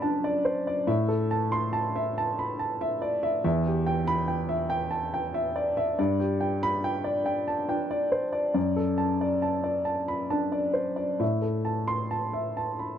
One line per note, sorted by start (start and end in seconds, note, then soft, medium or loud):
0.00 0.85 F#2 medium
0.00 0.71 D4 medium
0.00 0.91 A4 medium
0.00 0.24 D5 medium
0.00 0.02 A5 medium
0.00 0.37 A5 medium
0.00 0.91 B5 medium
0.24 0.58 D5 medium
0.45 0.67 C5 medium
0.67 0.89 D5 medium
0.87 3.40 A2 medium
0.87 1.22 E5 medium
1.08 1.43 A4 medium
1.31 1.65 A5 medium
1.52 1.86 C6 medium
1.73 2.08 A5 medium
1.96 2.30 E5 medium
2.18 2.51 A5 medium
2.39 2.60 B5 soft
2.59 2.93 A5 medium
2.81 3.15 E5 medium
3.02 3.23 D5 medium
3.23 3.43 E5 medium
3.44 5.94 E2 medium
3.44 3.78 E5 medium
3.66 3.99 G4 medium
3.87 4.20 G5 medium
4.07 4.41 B5 medium
4.28 4.62 G5 medium
4.49 4.83 E5 medium
4.70 5.04 G5 medium
4.91 5.13 A5 soft
5.14 5.47 G5 medium
5.34 5.68 E5 medium
5.56 5.77 D5 medium
5.77 5.98 E5 medium
5.99 8.51 G2 medium
5.99 6.33 D5 medium
6.20 6.54 G4 medium
6.41 6.75 G5 medium
6.63 6.97 B5 medium
6.84 7.18 G5 medium
7.04 7.39 D5 medium
7.26 7.60 G5 medium
7.48 7.69 A5 medium
7.68 8.38 D4 medium
7.68 8.03 G5 medium
7.91 8.25 D5 medium
8.12 8.33 C5 medium
8.33 8.53 D5 medium
8.54 11.16 F#2 medium
8.54 8.90 D5 medium
8.76 9.12 A4 medium
8.98 9.33 A5 medium
9.21 9.56 D5 medium
9.42 9.78 A5 medium
9.64 10.00 D5 medium
9.85 10.21 A5 soft
10.08 10.31 B5 medium
10.30 11.02 D4 soft
10.30 10.66 A5 medium
10.52 10.88 D5 soft
10.74 10.97 C5 soft
10.96 11.20 D5 soft
11.19 12.98 A2 medium
11.19 11.57 E5 medium
11.42 11.80 A4 soft
11.65 12.02 A5 soft
11.88 12.25 C6 medium
12.11 12.48 A5 medium
12.33 12.71 E5 soft
12.57 12.94 A5 soft
12.79 12.98 B5 soft